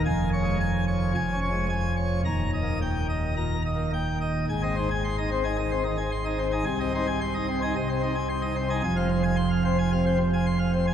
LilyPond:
<<
  \new Staff \with { instrumentName = "Pipe organ" } { \time 4/4 \key aes \major \tempo 4 = 110 << { aes''8 des''8 aes''8 des''8 aes''8 des''8 aes''8 des''8 | bes''8 ees''8 g''8 ees''8 bes''8 ees''8 g''8 ees''8 | aes''16 ees''16 c''16 aes''16 c'''16 ees''16 c''16 aes''16 ees''16 c''16 ees16 aes''16 c'''16 ees''16 c''16 aes''16 | aes''16 ees''16 c''16 aes''16 c'''16 ees''16 c''16 aes''16 ees''16 c''16 c'16 aes''16 c'''16 ees''16 c''16 aes''16 |
aes''16 f''16 c''16 aes''16 c'''16 f''16 c''16 aes''16 f''16 c''16 c16 aes''16 c'''16 f''16 c''16 aes''16 | } \\ { \tuplet 3/2 { f,4 aes8 } r4 \tuplet 3/2 { f,8 des'8 aes8 } r4 | \tuplet 3/2 { ees,4 bes8 } r4 \tuplet 3/2 { bes,8 r8 bes8 } r4 | aes,16 c'16 ees'16 r8 ees'16 c'16 ees'16 ees16 c'16 ees'16 r8 ees'16 c'16 ees'16 | c16 c'16 ees'16 r8 ees'16 c'16 ees'16 c16 c'16 ees'16 r8 ees'16 c'16 ees'16 |
f,16 c'16 r4 c'16 r16 c16 c'16 r4 c'16 r16 | } >> }
  \new Staff \with { instrumentName = "Pipe organ" } { \clef bass \time 4/4 \key aes \major f,,2 f,,2 | ees,,1 | aes,,1 | c,2 c,2 |
f,,1 | }
>>